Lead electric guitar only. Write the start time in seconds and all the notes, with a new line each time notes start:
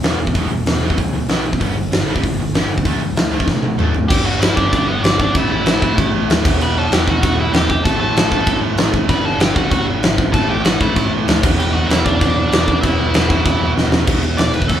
4.08 G4 G5
4.25 F#4 F#5
4.40 E4 E5
4.56 D4 D5
4.72 D4 D5
4.87 B3 B4
5.03 D4 D5
5.21 D4 D5
5.36 E4 E5
5.52 E4 E5
6.62 B4 B5
6.78 A4 A5
6.93 G4 G5
7.08 F#4 F#5
7.23 F#4 F#5
7.40 E4 E5
7.53 G4 G5
7.70 G4 G5
7.84 A4 A5
8.00 A4 A5
9.09 B4 B5
9.25 A4 A5
9.40 G4 G5
9.56 F#4 F#5
9.71 F#4 F#5
10.33 A4 A5
10.49 G4 G5
10.64 F#4 F#5
10.81 E4 E5
10.97 E4 E5
11.59 G4 G5
11.74 F#4 F#5
11.87 E4 E5
12.04 D4 D5
12.20 D4 D5
12.81 E4 E5
14.37 D5
14.54 B4
14.68 A4